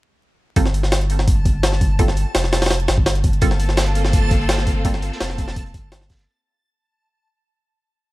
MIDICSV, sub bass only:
0, 0, Header, 1, 2, 480
1, 0, Start_track
1, 0, Key_signature, -2, "minor"
1, 0, Tempo, 357143
1, 757, Time_signature, 4, 2, 24, 8
1, 10917, End_track
2, 0, Start_track
2, 0, Title_t, "Sub bass"
2, 0, Program_c, 0, 38
2, 755, Note_on_c, 0, 31, 97
2, 3021, Note_off_c, 0, 31, 0
2, 3154, Note_on_c, 0, 29, 100
2, 3857, Note_off_c, 0, 29, 0
2, 3876, Note_on_c, 0, 31, 100
2, 4338, Note_off_c, 0, 31, 0
2, 4354, Note_on_c, 0, 31, 78
2, 4572, Note_off_c, 0, 31, 0
2, 4594, Note_on_c, 0, 31, 99
2, 6860, Note_off_c, 0, 31, 0
2, 6997, Note_on_c, 0, 29, 101
2, 7698, Note_off_c, 0, 29, 0
2, 7717, Note_on_c, 0, 31, 100
2, 8179, Note_off_c, 0, 31, 0
2, 8197, Note_on_c, 0, 31, 80
2, 8414, Note_off_c, 0, 31, 0
2, 10917, End_track
0, 0, End_of_file